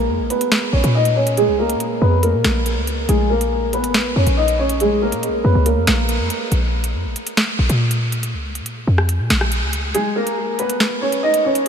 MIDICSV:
0, 0, Header, 1, 4, 480
1, 0, Start_track
1, 0, Tempo, 428571
1, 1539, Time_signature, 4, 2, 24, 8
1, 13083, End_track
2, 0, Start_track
2, 0, Title_t, "Upright piano"
2, 0, Program_c, 0, 0
2, 0, Note_on_c, 0, 58, 74
2, 0, Note_on_c, 0, 70, 82
2, 310, Note_off_c, 0, 70, 0
2, 315, Note_off_c, 0, 58, 0
2, 337, Note_on_c, 0, 71, 79
2, 347, Note_on_c, 0, 59, 64
2, 789, Note_off_c, 0, 71, 0
2, 794, Note_off_c, 0, 59, 0
2, 812, Note_on_c, 0, 73, 84
2, 821, Note_on_c, 0, 61, 62
2, 1030, Note_off_c, 0, 73, 0
2, 1035, Note_off_c, 0, 61, 0
2, 1065, Note_on_c, 0, 75, 90
2, 1074, Note_on_c, 0, 63, 71
2, 1277, Note_off_c, 0, 75, 0
2, 1282, Note_off_c, 0, 63, 0
2, 1297, Note_on_c, 0, 73, 79
2, 1305, Note_on_c, 0, 61, 64
2, 1512, Note_off_c, 0, 73, 0
2, 1517, Note_off_c, 0, 61, 0
2, 1538, Note_on_c, 0, 68, 99
2, 1547, Note_on_c, 0, 56, 76
2, 1753, Note_off_c, 0, 68, 0
2, 1758, Note_off_c, 0, 56, 0
2, 1776, Note_on_c, 0, 70, 84
2, 1785, Note_on_c, 0, 58, 69
2, 2228, Note_off_c, 0, 70, 0
2, 2233, Note_off_c, 0, 58, 0
2, 2258, Note_on_c, 0, 71, 83
2, 2267, Note_on_c, 0, 59, 67
2, 2473, Note_off_c, 0, 71, 0
2, 2478, Note_off_c, 0, 59, 0
2, 2496, Note_on_c, 0, 70, 73
2, 2505, Note_on_c, 0, 58, 56
2, 2712, Note_off_c, 0, 70, 0
2, 2717, Note_off_c, 0, 58, 0
2, 2743, Note_on_c, 0, 70, 73
2, 2752, Note_on_c, 0, 58, 58
2, 3418, Note_off_c, 0, 70, 0
2, 3422, Note_off_c, 0, 58, 0
2, 3458, Note_on_c, 0, 68, 111
2, 3467, Note_on_c, 0, 56, 84
2, 3673, Note_off_c, 0, 68, 0
2, 3678, Note_off_c, 0, 56, 0
2, 3696, Note_on_c, 0, 70, 79
2, 3705, Note_on_c, 0, 58, 69
2, 4148, Note_off_c, 0, 70, 0
2, 4153, Note_off_c, 0, 58, 0
2, 4186, Note_on_c, 0, 71, 85
2, 4195, Note_on_c, 0, 59, 60
2, 4634, Note_off_c, 0, 71, 0
2, 4638, Note_off_c, 0, 59, 0
2, 4655, Note_on_c, 0, 73, 88
2, 4665, Note_on_c, 0, 61, 64
2, 4871, Note_off_c, 0, 73, 0
2, 4877, Note_off_c, 0, 61, 0
2, 4897, Note_on_c, 0, 75, 92
2, 4906, Note_on_c, 0, 63, 71
2, 5112, Note_off_c, 0, 75, 0
2, 5117, Note_off_c, 0, 63, 0
2, 5137, Note_on_c, 0, 73, 84
2, 5146, Note_on_c, 0, 61, 64
2, 5352, Note_off_c, 0, 73, 0
2, 5357, Note_off_c, 0, 61, 0
2, 5385, Note_on_c, 0, 68, 92
2, 5394, Note_on_c, 0, 56, 82
2, 5597, Note_off_c, 0, 68, 0
2, 5602, Note_off_c, 0, 56, 0
2, 5623, Note_on_c, 0, 70, 83
2, 5632, Note_on_c, 0, 58, 68
2, 6072, Note_off_c, 0, 70, 0
2, 6077, Note_off_c, 0, 58, 0
2, 6092, Note_on_c, 0, 71, 80
2, 6101, Note_on_c, 0, 59, 64
2, 6310, Note_off_c, 0, 71, 0
2, 6315, Note_off_c, 0, 59, 0
2, 6340, Note_on_c, 0, 70, 76
2, 6349, Note_on_c, 0, 58, 56
2, 6554, Note_off_c, 0, 70, 0
2, 6559, Note_off_c, 0, 58, 0
2, 6576, Note_on_c, 0, 70, 70
2, 6585, Note_on_c, 0, 58, 62
2, 7254, Note_off_c, 0, 70, 0
2, 7259, Note_off_c, 0, 58, 0
2, 11137, Note_on_c, 0, 68, 108
2, 11147, Note_on_c, 0, 56, 86
2, 11353, Note_off_c, 0, 68, 0
2, 11358, Note_off_c, 0, 56, 0
2, 11377, Note_on_c, 0, 70, 81
2, 11386, Note_on_c, 0, 58, 71
2, 11829, Note_off_c, 0, 70, 0
2, 11834, Note_off_c, 0, 58, 0
2, 11866, Note_on_c, 0, 71, 84
2, 11875, Note_on_c, 0, 59, 59
2, 12314, Note_off_c, 0, 71, 0
2, 12319, Note_off_c, 0, 59, 0
2, 12336, Note_on_c, 0, 73, 86
2, 12344, Note_on_c, 0, 61, 64
2, 12552, Note_off_c, 0, 73, 0
2, 12556, Note_off_c, 0, 61, 0
2, 12577, Note_on_c, 0, 75, 92
2, 12587, Note_on_c, 0, 63, 71
2, 12793, Note_off_c, 0, 75, 0
2, 12798, Note_off_c, 0, 63, 0
2, 12817, Note_on_c, 0, 73, 81
2, 12826, Note_on_c, 0, 61, 65
2, 13032, Note_off_c, 0, 73, 0
2, 13038, Note_off_c, 0, 61, 0
2, 13083, End_track
3, 0, Start_track
3, 0, Title_t, "808-style bass"
3, 0, Program_c, 1, 38
3, 0, Note_on_c, 1, 34, 109
3, 99, Note_on_c, 1, 41, 97
3, 115, Note_off_c, 1, 34, 0
3, 218, Note_on_c, 1, 34, 101
3, 235, Note_off_c, 1, 41, 0
3, 332, Note_off_c, 1, 34, 0
3, 818, Note_on_c, 1, 34, 103
3, 931, Note_off_c, 1, 34, 0
3, 938, Note_on_c, 1, 46, 108
3, 1658, Note_on_c, 1, 37, 98
3, 1675, Note_off_c, 1, 46, 0
3, 1958, Note_on_c, 1, 46, 98
3, 1975, Note_off_c, 1, 37, 0
3, 2243, Note_off_c, 1, 46, 0
3, 2258, Note_on_c, 1, 41, 106
3, 2618, Note_on_c, 1, 46, 98
3, 2635, Note_off_c, 1, 41, 0
3, 2732, Note_off_c, 1, 46, 0
3, 2738, Note_on_c, 1, 34, 107
3, 3097, Note_on_c, 1, 37, 100
3, 3114, Note_off_c, 1, 34, 0
3, 3440, Note_off_c, 1, 37, 0
3, 3458, Note_on_c, 1, 34, 107
3, 4299, Note_on_c, 1, 32, 102
3, 4315, Note_off_c, 1, 34, 0
3, 4479, Note_on_c, 1, 34, 96
3, 4496, Note_off_c, 1, 32, 0
3, 4650, Note_off_c, 1, 34, 0
3, 4660, Note_on_c, 1, 41, 100
3, 4774, Note_off_c, 1, 41, 0
3, 4779, Note_on_c, 1, 34, 105
3, 5739, Note_on_c, 1, 46, 100
3, 5756, Note_off_c, 1, 34, 0
3, 5919, Note_on_c, 1, 34, 100
3, 5936, Note_off_c, 1, 46, 0
3, 6090, Note_off_c, 1, 34, 0
3, 6099, Note_on_c, 1, 41, 107
3, 6214, Note_off_c, 1, 41, 0
3, 6219, Note_on_c, 1, 37, 107
3, 6458, Note_on_c, 1, 41, 96
3, 6475, Note_off_c, 1, 37, 0
3, 6573, Note_off_c, 1, 41, 0
3, 6579, Note_on_c, 1, 34, 108
3, 6939, Note_on_c, 1, 41, 98
3, 6955, Note_off_c, 1, 34, 0
3, 7053, Note_off_c, 1, 41, 0
3, 7299, Note_on_c, 1, 34, 105
3, 7779, Note_on_c, 1, 41, 99
3, 7796, Note_off_c, 1, 34, 0
3, 7899, Note_on_c, 1, 34, 97
3, 7916, Note_off_c, 1, 41, 0
3, 8013, Note_off_c, 1, 34, 0
3, 8499, Note_on_c, 1, 34, 103
3, 8614, Note_off_c, 1, 34, 0
3, 8619, Note_on_c, 1, 46, 102
3, 9338, Note_on_c, 1, 37, 97
3, 9355, Note_off_c, 1, 46, 0
3, 9639, Note_on_c, 1, 46, 101
3, 9656, Note_off_c, 1, 37, 0
3, 9924, Note_off_c, 1, 46, 0
3, 9939, Note_on_c, 1, 41, 103
3, 10298, Note_on_c, 1, 46, 98
3, 10315, Note_off_c, 1, 41, 0
3, 10412, Note_off_c, 1, 46, 0
3, 10419, Note_on_c, 1, 34, 108
3, 10779, Note_on_c, 1, 37, 96
3, 10795, Note_off_c, 1, 34, 0
3, 11121, Note_off_c, 1, 37, 0
3, 13083, End_track
4, 0, Start_track
4, 0, Title_t, "Drums"
4, 339, Note_on_c, 9, 42, 69
4, 451, Note_off_c, 9, 42, 0
4, 459, Note_on_c, 9, 42, 81
4, 571, Note_off_c, 9, 42, 0
4, 578, Note_on_c, 9, 38, 121
4, 690, Note_off_c, 9, 38, 0
4, 939, Note_on_c, 9, 42, 66
4, 1051, Note_off_c, 9, 42, 0
4, 1179, Note_on_c, 9, 42, 78
4, 1291, Note_off_c, 9, 42, 0
4, 1419, Note_on_c, 9, 42, 70
4, 1531, Note_off_c, 9, 42, 0
4, 1539, Note_on_c, 9, 42, 74
4, 1651, Note_off_c, 9, 42, 0
4, 1899, Note_on_c, 9, 42, 71
4, 2011, Note_off_c, 9, 42, 0
4, 2018, Note_on_c, 9, 42, 73
4, 2130, Note_off_c, 9, 42, 0
4, 2498, Note_on_c, 9, 42, 90
4, 2610, Note_off_c, 9, 42, 0
4, 2738, Note_on_c, 9, 38, 118
4, 2738, Note_on_c, 9, 42, 69
4, 2850, Note_off_c, 9, 38, 0
4, 2850, Note_off_c, 9, 42, 0
4, 2978, Note_on_c, 9, 42, 83
4, 3090, Note_off_c, 9, 42, 0
4, 3219, Note_on_c, 9, 42, 85
4, 3331, Note_off_c, 9, 42, 0
4, 3459, Note_on_c, 9, 42, 72
4, 3571, Note_off_c, 9, 42, 0
4, 3819, Note_on_c, 9, 42, 71
4, 3931, Note_off_c, 9, 42, 0
4, 4179, Note_on_c, 9, 42, 68
4, 4291, Note_off_c, 9, 42, 0
4, 4298, Note_on_c, 9, 42, 87
4, 4410, Note_off_c, 9, 42, 0
4, 4417, Note_on_c, 9, 38, 121
4, 4529, Note_off_c, 9, 38, 0
4, 4778, Note_on_c, 9, 42, 69
4, 4890, Note_off_c, 9, 42, 0
4, 5018, Note_on_c, 9, 42, 79
4, 5130, Note_off_c, 9, 42, 0
4, 5258, Note_on_c, 9, 42, 73
4, 5370, Note_off_c, 9, 42, 0
4, 5379, Note_on_c, 9, 42, 73
4, 5491, Note_off_c, 9, 42, 0
4, 5738, Note_on_c, 9, 42, 71
4, 5850, Note_off_c, 9, 42, 0
4, 5858, Note_on_c, 9, 42, 72
4, 5970, Note_off_c, 9, 42, 0
4, 6338, Note_on_c, 9, 42, 93
4, 6450, Note_off_c, 9, 42, 0
4, 6578, Note_on_c, 9, 38, 115
4, 6578, Note_on_c, 9, 42, 69
4, 6690, Note_off_c, 9, 38, 0
4, 6690, Note_off_c, 9, 42, 0
4, 6818, Note_on_c, 9, 42, 88
4, 6930, Note_off_c, 9, 42, 0
4, 7058, Note_on_c, 9, 42, 87
4, 7170, Note_off_c, 9, 42, 0
4, 7298, Note_on_c, 9, 42, 73
4, 7410, Note_off_c, 9, 42, 0
4, 7658, Note_on_c, 9, 42, 72
4, 7770, Note_off_c, 9, 42, 0
4, 8019, Note_on_c, 9, 42, 73
4, 8131, Note_off_c, 9, 42, 0
4, 8138, Note_on_c, 9, 42, 82
4, 8250, Note_off_c, 9, 42, 0
4, 8258, Note_on_c, 9, 38, 121
4, 8370, Note_off_c, 9, 38, 0
4, 8618, Note_on_c, 9, 42, 72
4, 8730, Note_off_c, 9, 42, 0
4, 8858, Note_on_c, 9, 42, 80
4, 8970, Note_off_c, 9, 42, 0
4, 9098, Note_on_c, 9, 42, 72
4, 9210, Note_off_c, 9, 42, 0
4, 9219, Note_on_c, 9, 42, 73
4, 9331, Note_off_c, 9, 42, 0
4, 9579, Note_on_c, 9, 42, 68
4, 9691, Note_off_c, 9, 42, 0
4, 9699, Note_on_c, 9, 42, 74
4, 9811, Note_off_c, 9, 42, 0
4, 10059, Note_on_c, 9, 37, 73
4, 10171, Note_off_c, 9, 37, 0
4, 10179, Note_on_c, 9, 42, 95
4, 10291, Note_off_c, 9, 42, 0
4, 10419, Note_on_c, 9, 38, 116
4, 10419, Note_on_c, 9, 42, 67
4, 10531, Note_off_c, 9, 38, 0
4, 10531, Note_off_c, 9, 42, 0
4, 10539, Note_on_c, 9, 37, 92
4, 10651, Note_off_c, 9, 37, 0
4, 10659, Note_on_c, 9, 42, 88
4, 10771, Note_off_c, 9, 42, 0
4, 10899, Note_on_c, 9, 42, 88
4, 11011, Note_off_c, 9, 42, 0
4, 11139, Note_on_c, 9, 42, 74
4, 11251, Note_off_c, 9, 42, 0
4, 11499, Note_on_c, 9, 42, 68
4, 11611, Note_off_c, 9, 42, 0
4, 11859, Note_on_c, 9, 42, 70
4, 11971, Note_off_c, 9, 42, 0
4, 11979, Note_on_c, 9, 42, 83
4, 12091, Note_off_c, 9, 42, 0
4, 12099, Note_on_c, 9, 38, 117
4, 12211, Note_off_c, 9, 38, 0
4, 12459, Note_on_c, 9, 42, 70
4, 12571, Note_off_c, 9, 42, 0
4, 12699, Note_on_c, 9, 42, 78
4, 12811, Note_off_c, 9, 42, 0
4, 12939, Note_on_c, 9, 42, 73
4, 13051, Note_off_c, 9, 42, 0
4, 13083, End_track
0, 0, End_of_file